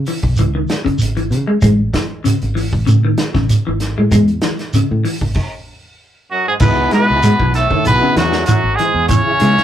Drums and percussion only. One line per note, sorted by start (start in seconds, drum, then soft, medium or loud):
0.06 open hi-hat medium
0.06 shekere soft
0.23 kick medium
0.36 closed hi-hat medium
0.36 shekere medium
0.68 snare medium
0.68 closed hi-hat soft
0.68 shekere soft
0.86 kick medium
0.86 closed hi-hat soft
0.98 closed hi-hat medium
0.98 shekere medium
1.17 closed hi-hat soft
1.31 closed hi-hat soft
1.31 shekere soft
1.62 kick medium
1.62 closed hi-hat medium
1.62 shekere medium
1.94 kick medium
1.94 snare medium
1.94 closed hi-hat soft
1.94 shekere soft
2.25 closed hi-hat medium
2.25 shekere medium
2.41 closed hi-hat soft
2.57 open hi-hat medium
2.57 shekere soft
2.73 kick medium
2.87 closed hi-hat medium
2.87 shekere medium
3.18 snare medium
3.18 closed hi-hat soft
3.18 shekere soft
3.34 kick medium
3.34 snare soft
3.49 closed hi-hat medium
3.49 shekere medium
3.80 snare soft
3.80 closed hi-hat medium
3.80 shekere soft
4.12 kick medium
4.12 closed hi-hat medium
4.12 shekere medium
4.28 closed hi-hat soft
4.41 snare medium
4.41 closed hi-hat medium
4.41 shekere soft
4.59 snare soft
4.59 closed hi-hat soft
4.73 closed hi-hat medium
4.73 shekere medium
5.05 open hi-hat medium
5.05 shekere soft
5.21 kick medium
5.34 kick medium
5.34 crash medium
6.60 kick medium
6.60 crash medium
6.60 shekere medium
6.91 snare soft
6.91 closed hi-hat soft
6.91 shekere soft
7.22 closed hi-hat medium
7.22 shekere medium
7.40 kick medium
7.54 snare soft
7.54 closed hi-hat soft
7.54 shekere soft
7.71 kick medium
7.85 closed hi-hat medium
7.85 shekere medium
8.16 snare medium
8.16 closed hi-hat medium
8.16 shekere soft
8.32 snare medium
8.46 closed hi-hat medium
8.46 shekere medium
8.79 closed hi-hat medium
8.79 shekere soft
9.08 kick medium
9.08 closed hi-hat medium
9.08 shekere medium
9.40 closed hi-hat medium
9.40 shekere soft
9.57 snare soft